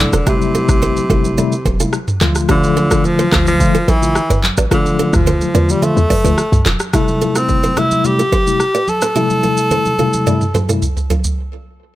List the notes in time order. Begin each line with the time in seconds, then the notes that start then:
Already playing: D3
0.00 C3 G3 A3 E4
0.13 E1 A4 C5, cross-stick, shaker
0.26 C3 G3 A3 E4 G4, kick, cross-stick, shaker
0.41 high conga, shaker
0.55 F4 A4, high conga, shaker
0.69 A1, kick, cross-stick, shaker
0.82 A4 C5, low conga, shaker
0.97 high conga, shaker
1.10 G1 C3 G3 A3 E4 F4 A4, kick, shaker
1.25 high conga, shaker
1.38 C3 G3 A3 E4 A4 D5, low conga, shaker
1.52 shaker
1.66 E1 A4 C5, kick, high conga, shaker
1.80 C3 G3 A3 E4 F4 A4, shaker
1.93 cross-stick, shaker
2.08 mid tom, shaker
2.21 D2 D3 F3 A3 F4 A4, clap, high conga, shaker
2.35 cross-stick, shaker
2.49 D3 F3 A3 D4 F4 G4, kick, cross-stick, shaker
2.64 high conga, shaker
2.77 F4 A4, high conga, shaker
2.91 F4 A4, kick, cross-stick, shaker
3.04 F3, low conga, shaker
3.19 A4 C5, high conga, shaker
3.32 D2 D3 F3 A3 F4 A4, kick, cross-stick, clap, shaker
3.47 F3, high conga, shaker
3.60 D3 F3 A3 F4, kick, low conga, shaker
3.75 F4 A4, shaker
3.88 A1 E3 A4 C5, high conga, shaker
4.02 D3 F3 A3 F4, shaker
4.15 cross-stick, shaker
4.30 G1 B4 D5, mid tom, shaker
4.43 clap, high conga, shaker
4.57 A1 B4 D5, cross-stick, shaker
4.71 D3 F3 A3 F4 A4, kick, cross-stick, shaker
4.86 high conga, shaker
4.99 F4 A4, high conga, shaker
5.13 D2 F3, kick, cross-stick, mid tom, shaker
5.26 A4 C5, low conga, shaker
5.41 high conga, shaker
5.54 E2 D3 F3 A3 F4 B4 D5, shaker
5.69 G3, high conga, shaker
5.82 D3 F3 A3 F4 A4 E5, low conga, shaker
5.97 E2, shaker
6.10 B4 D5, kick, mid tom, open hi-hat, high conga, shaker
6.24 D2 D3 F3 A3 F4 B4 D5, shaker
6.38 cross-stick, shaker
6.52 C2, mid tom, shaker
6.66 E1 F4 A4, clap, high conga, shaker
6.80 cross-stick, shaker
6.93 C3 G3 A3 E4 G4, kick, cross-stick, shaker
7.08 high conga, shaker
7.21 F4 A4, high conga, shaker
7.35 C4 F4 A4, cross-stick, shaker
7.49 kick, low conga, shaker
7.63 A4 C5, high conga, shaker
7.77 C3 G3 A3 E4 F4 A4, cross-stick, low conga, shaker
7.91 high conga, shaker
8.04 C3 G3 A3 E4 G4, low conga, shaker
8.19 F4 A4, shaker
8.32 A4 C5, kick, high conga, shaker
8.47 C3 G3 A3 E4, shaker
8.60 cross-stick, shaker
8.75 B4 D5, shaker
8.88 A4, high conga, shaker
9.02 A4 C5, cross-stick, shaker
9.15 C3 G3 A3 E4 G4, high tom, shaker
9.30 high conga, shaker
9.43 F4 A4, high tom, high conga, shaker
9.57 shaker
9.71 A4 C5, mid tom, low conga, shaker
9.85 high conga, shaker
9.99 C3 G3 A3 E4 F4 A4, mid tom, low conga, shaker
10.13 high conga, shaker
10.27 C3 G3 A3 E4 A4 D5, mid tom, low conga, shaker
10.41 mid tom, shaker
10.54 A4 C5, mid tom, high conga, shaker
10.69 C3 G3 A3 E4 F4 A4, mid tom, shaker
10.82 floor tom, shaker
10.97 floor tom, shaker
11.10 F4 A4, floor tom, high conga, shaker
11.24 floor tom, shaker